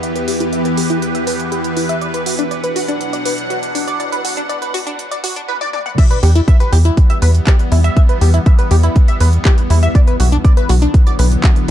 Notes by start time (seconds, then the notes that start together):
Already playing: E2 E3 B3 G4 B4
0.03 E5, closed hi-hat
0.16 B4, closed hi-hat
0.28 G4, open hi-hat
0.40 E4, closed hi-hat
0.53 E5, closed hi-hat
0.65 B4, closed hi-hat
0.77 G4, open hi-hat
0.90 E4, closed hi-hat
1.02 closed hi-hat
1.15 E5, closed hi-hat
1.27 B4, open hi-hat
1.40 closed hi-hat
1.52 G4, closed hi-hat
1.64 closed hi-hat
1.77 E4, open hi-hat
1.89 E5, closed hi-hat
2.01 B2 F#3 D4 D5 F#5, closed hi-hat
2.14 B4, closed hi-hat
2.26 F#4, open hi-hat
2.39 D4, closed hi-hat
2.51 D5, closed hi-hat
2.64 B4, closed hi-hat
2.76 F#4, open hi-hat
2.88 D4, closed hi-hat
3.01 closed hi-hat
3.13 D5, closed hi-hat
3.25 B4, open hi-hat
3.38 closed hi-hat
3.50 F#4, closed hi-hat
3.63 closed hi-hat
3.75 D4, open hi-hat
3.87 D5, closed hi-hat
4.00 D5, closed hi-hat
4.12 B4, closed hi-hat
4.25 F#4, open hi-hat
4.37 D4, closed hi-hat
4.49 D5, closed hi-hat
4.62 B4, closed hi-hat
4.74 F#4, open hi-hat
4.87 D4, closed hi-hat
4.99 closed hi-hat
5.11 D5, closed hi-hat
5.24 F#4, open hi-hat
5.36 D4, closed hi-hat
5.48 B4, high tom
5.61 D5, high tom
5.73 D5, mid tom
5.86 F#5, mid tom
5.98 E2 E3 G3 B3 E5, kick, closed hi-hat, crash
6.11 B4, closed hi-hat
6.23 E2 G4, open hi-hat
6.35 E4, closed hi-hat
6.48 E5, kick, closed hi-hat
6.60 B4, closed hi-hat
6.72 E2 G4, open hi-hat
6.85 E4, closed hi-hat
6.97 kick, closed hi-hat
7.10 E5, closed hi-hat
7.22 E2 B4, open hi-hat
7.35 closed hi-hat
7.47 G4, kick, clap, closed hi-hat
7.59 closed hi-hat
7.72 E2 E4, open hi-hat
7.84 E5, closed hi-hat
7.97 E5, kick, closed hi-hat
8.09 B4, closed hi-hat
8.21 E2 G4, open hi-hat
8.34 E4, closed hi-hat
8.46 E5, kick, closed hi-hat
8.59 B4, closed hi-hat
8.71 E2 G4, open hi-hat
8.83 E4, closed hi-hat
8.96 kick, closed hi-hat
9.08 E5, closed hi-hat
9.20 E2 B4, open hi-hat
9.33 closed hi-hat
9.45 G4, kick, clap, closed hi-hat
9.58 closed hi-hat
9.70 E2 E4, open hi-hat
9.83 E5, closed hi-hat
9.95 D3 F#3 B3 D5, kick, closed hi-hat
10.07 B4, closed hi-hat
10.20 B1 F#4, open hi-hat
10.32 D4, closed hi-hat
10.45 D5, kick, closed hi-hat
10.57 B4, closed hi-hat
10.69 B1 F#4, open hi-hat
10.82 D4, closed hi-hat
10.94 kick, closed hi-hat
11.07 D5, closed hi-hat
11.19 B1 B4, open hi-hat
11.31 closed hi-hat
11.44 F#4, kick, clap, closed hi-hat
11.56 closed hi-hat